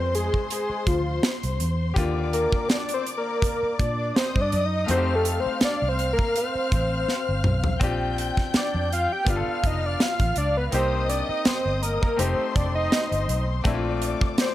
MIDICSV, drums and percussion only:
0, 0, Header, 1, 2, 480
1, 0, Start_track
1, 0, Key_signature, -2, "major"
1, 0, Tempo, 729927
1, 1293, Time_signature, 4, 2, 24, 8
1, 9565, End_track
2, 0, Start_track
2, 0, Title_t, "Drums"
2, 96, Note_on_c, 9, 42, 67
2, 162, Note_off_c, 9, 42, 0
2, 223, Note_on_c, 9, 36, 64
2, 288, Note_off_c, 9, 36, 0
2, 332, Note_on_c, 9, 42, 89
2, 398, Note_off_c, 9, 42, 0
2, 571, Note_on_c, 9, 36, 96
2, 572, Note_on_c, 9, 42, 53
2, 636, Note_off_c, 9, 36, 0
2, 638, Note_off_c, 9, 42, 0
2, 810, Note_on_c, 9, 38, 105
2, 811, Note_on_c, 9, 42, 66
2, 876, Note_off_c, 9, 38, 0
2, 877, Note_off_c, 9, 42, 0
2, 942, Note_on_c, 9, 42, 49
2, 1008, Note_off_c, 9, 42, 0
2, 1052, Note_on_c, 9, 42, 65
2, 1118, Note_off_c, 9, 42, 0
2, 1291, Note_on_c, 9, 36, 85
2, 1296, Note_on_c, 9, 42, 84
2, 1357, Note_off_c, 9, 36, 0
2, 1361, Note_off_c, 9, 42, 0
2, 1534, Note_on_c, 9, 42, 73
2, 1600, Note_off_c, 9, 42, 0
2, 1660, Note_on_c, 9, 36, 80
2, 1726, Note_off_c, 9, 36, 0
2, 1772, Note_on_c, 9, 42, 79
2, 1775, Note_on_c, 9, 38, 109
2, 1838, Note_off_c, 9, 42, 0
2, 1840, Note_off_c, 9, 38, 0
2, 1898, Note_on_c, 9, 42, 67
2, 1964, Note_off_c, 9, 42, 0
2, 2016, Note_on_c, 9, 42, 61
2, 2082, Note_off_c, 9, 42, 0
2, 2251, Note_on_c, 9, 36, 98
2, 2260, Note_on_c, 9, 42, 87
2, 2317, Note_off_c, 9, 36, 0
2, 2325, Note_off_c, 9, 42, 0
2, 2495, Note_on_c, 9, 36, 88
2, 2498, Note_on_c, 9, 42, 60
2, 2561, Note_off_c, 9, 36, 0
2, 2563, Note_off_c, 9, 42, 0
2, 2739, Note_on_c, 9, 38, 100
2, 2739, Note_on_c, 9, 42, 67
2, 2804, Note_off_c, 9, 38, 0
2, 2805, Note_off_c, 9, 42, 0
2, 2865, Note_on_c, 9, 36, 81
2, 2931, Note_off_c, 9, 36, 0
2, 2974, Note_on_c, 9, 42, 67
2, 3040, Note_off_c, 9, 42, 0
2, 3211, Note_on_c, 9, 42, 83
2, 3277, Note_off_c, 9, 42, 0
2, 3453, Note_on_c, 9, 42, 69
2, 3519, Note_off_c, 9, 42, 0
2, 3687, Note_on_c, 9, 42, 77
2, 3690, Note_on_c, 9, 38, 114
2, 3753, Note_off_c, 9, 42, 0
2, 3755, Note_off_c, 9, 38, 0
2, 3938, Note_on_c, 9, 42, 57
2, 4004, Note_off_c, 9, 42, 0
2, 4069, Note_on_c, 9, 36, 77
2, 4135, Note_off_c, 9, 36, 0
2, 4180, Note_on_c, 9, 42, 87
2, 4245, Note_off_c, 9, 42, 0
2, 4419, Note_on_c, 9, 36, 86
2, 4419, Note_on_c, 9, 42, 59
2, 4484, Note_off_c, 9, 42, 0
2, 4485, Note_off_c, 9, 36, 0
2, 4659, Note_on_c, 9, 38, 52
2, 4725, Note_off_c, 9, 38, 0
2, 4893, Note_on_c, 9, 45, 78
2, 4959, Note_off_c, 9, 45, 0
2, 5022, Note_on_c, 9, 43, 87
2, 5087, Note_off_c, 9, 43, 0
2, 5135, Note_on_c, 9, 36, 84
2, 5136, Note_on_c, 9, 42, 81
2, 5201, Note_off_c, 9, 36, 0
2, 5202, Note_off_c, 9, 42, 0
2, 5381, Note_on_c, 9, 42, 71
2, 5447, Note_off_c, 9, 42, 0
2, 5507, Note_on_c, 9, 36, 79
2, 5509, Note_on_c, 9, 38, 27
2, 5572, Note_off_c, 9, 36, 0
2, 5575, Note_off_c, 9, 38, 0
2, 5615, Note_on_c, 9, 42, 74
2, 5617, Note_on_c, 9, 38, 108
2, 5681, Note_off_c, 9, 42, 0
2, 5683, Note_off_c, 9, 38, 0
2, 5869, Note_on_c, 9, 42, 64
2, 5935, Note_off_c, 9, 42, 0
2, 6093, Note_on_c, 9, 36, 100
2, 6100, Note_on_c, 9, 42, 92
2, 6159, Note_off_c, 9, 36, 0
2, 6166, Note_off_c, 9, 42, 0
2, 6337, Note_on_c, 9, 36, 94
2, 6340, Note_on_c, 9, 42, 62
2, 6402, Note_off_c, 9, 36, 0
2, 6406, Note_off_c, 9, 42, 0
2, 6578, Note_on_c, 9, 38, 96
2, 6578, Note_on_c, 9, 42, 75
2, 6643, Note_off_c, 9, 38, 0
2, 6644, Note_off_c, 9, 42, 0
2, 6705, Note_on_c, 9, 42, 52
2, 6706, Note_on_c, 9, 36, 81
2, 6771, Note_off_c, 9, 36, 0
2, 6771, Note_off_c, 9, 42, 0
2, 6811, Note_on_c, 9, 42, 66
2, 6876, Note_off_c, 9, 42, 0
2, 7052, Note_on_c, 9, 42, 86
2, 7118, Note_off_c, 9, 42, 0
2, 7296, Note_on_c, 9, 42, 65
2, 7362, Note_off_c, 9, 42, 0
2, 7531, Note_on_c, 9, 42, 76
2, 7533, Note_on_c, 9, 38, 116
2, 7597, Note_off_c, 9, 42, 0
2, 7599, Note_off_c, 9, 38, 0
2, 7778, Note_on_c, 9, 42, 56
2, 7844, Note_off_c, 9, 42, 0
2, 7909, Note_on_c, 9, 36, 72
2, 7975, Note_off_c, 9, 36, 0
2, 8016, Note_on_c, 9, 42, 98
2, 8082, Note_off_c, 9, 42, 0
2, 8257, Note_on_c, 9, 42, 62
2, 8258, Note_on_c, 9, 36, 89
2, 8323, Note_off_c, 9, 42, 0
2, 8324, Note_off_c, 9, 36, 0
2, 8497, Note_on_c, 9, 38, 100
2, 8498, Note_on_c, 9, 42, 74
2, 8563, Note_off_c, 9, 38, 0
2, 8564, Note_off_c, 9, 42, 0
2, 8630, Note_on_c, 9, 42, 52
2, 8696, Note_off_c, 9, 42, 0
2, 8740, Note_on_c, 9, 42, 70
2, 8806, Note_off_c, 9, 42, 0
2, 8975, Note_on_c, 9, 42, 78
2, 8977, Note_on_c, 9, 36, 97
2, 9040, Note_off_c, 9, 42, 0
2, 9043, Note_off_c, 9, 36, 0
2, 9217, Note_on_c, 9, 42, 76
2, 9283, Note_off_c, 9, 42, 0
2, 9347, Note_on_c, 9, 36, 84
2, 9413, Note_off_c, 9, 36, 0
2, 9455, Note_on_c, 9, 42, 78
2, 9457, Note_on_c, 9, 38, 113
2, 9521, Note_off_c, 9, 42, 0
2, 9523, Note_off_c, 9, 38, 0
2, 9565, End_track
0, 0, End_of_file